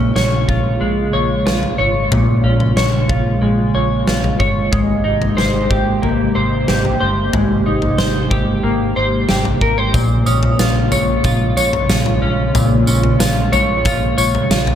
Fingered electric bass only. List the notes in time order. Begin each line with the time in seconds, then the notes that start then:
Already playing: A#1
0.16 A#1
0.49 A#1
0.81 A#1
1.14 A#1
1.46 A#1
1.79 G#1
2.11 A#1
2.44 A#1
2.77 A#1
3.10 A#1
3.42 A#1
3.75 A#1
4.07 A#1
4.40 G1
4.73 G#1
5.06 G#1
5.39 G#1
5.71 G#1
6.03 G#1
6.36 G#1
6.69 G#1
7.01 G1
7.33 G#1
7.66 G#1
7.98 G#1
8.31 G#1
8.64 G#1
8.97 G#1
9.29 G#1
9.61 G#1
9.94 A#1
10.27 A#1
10.60 A#1
10.92 A#1
11.25 A#1
11.57 A#1
11.90 A#1
12.23 A#1
12.55 A#1
12.88 A#1
13.20 A#1
13.53 A#1
13.86 A#1
14.18 A#1
14.50 A#1